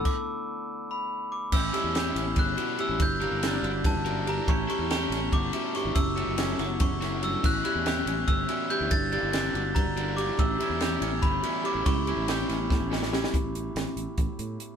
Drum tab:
CC |x-------------|x-------------|--------------|--------------|
RD |--------------|--x-x-x-x-x-x-|x-x-x-x-x-x-x-|x-x-x-x-x-x-x-|
HH |--------------|--------------|--------------|--------------|
SD |--------------|--o-o---o-----|----o---o-----|----o-o-----o-|
BD |o-------------|o-------o-----|o-------o-----|o-------o-----|

CC |--------------|x-------------|--------------|--------------|
RD |x-x-x-x-x-x-x-|--x-x-x-x-x-x-|x-x-x-x-x-x-x-|x-x-x-x-x-x-x-|
HH |--------------|--------------|--------------|--------------|
SD |----o-o-o-o---|----o---------|----o---------|----o---o-----|
BD |o-------o-----|o-------o-----|o-------o-----|o-------o-----|

CC |--------------|--------------|
RD |x-x-x-x-------|--------------|
HH |--------------|x-x-x-x-x-x-x-|
SD |----o-o-o-oooo|----o---------|
BD |o-------o-----|o-------o-----|